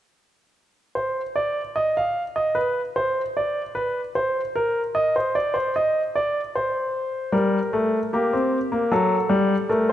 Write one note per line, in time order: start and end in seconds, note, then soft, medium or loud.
0.95 1.20 C5 medium
1.36 1.61 D5 medium
1.76 1.95 D#5 medium
1.97 2.22 F5 medium
2.36 2.55 D#5 medium
2.55 2.80 B4 medium
2.96 3.21 C5 medium
3.37 3.61 D5 medium
3.75 4.00 B4 medium
4.15 4.40 C5 medium
4.56 4.80 A#4 medium
4.95 5.14 D#5 medium
5.16 5.35 C5 medium
5.35 5.54 D5 medium
5.54 5.74 C5 medium
5.76 6.00 D#5 medium
6.16 6.40 D5 medium
6.56 7.32 C5 medium
7.32 7.57 G3 medium
7.32 8.10 A#4 medium
7.73 7.98 A3 medium
8.13 8.32 A#3 medium
8.13 8.89 G4 medium
8.33 8.57 C4 medium
8.72 8.91 A#3 medium
8.92 9.16 F#3 medium
8.92 9.68 A4 medium
9.29 9.54 G3 medium
9.69 9.93 A3 medium
9.69 9.89 A#4 medium
9.89 9.93 C5 medium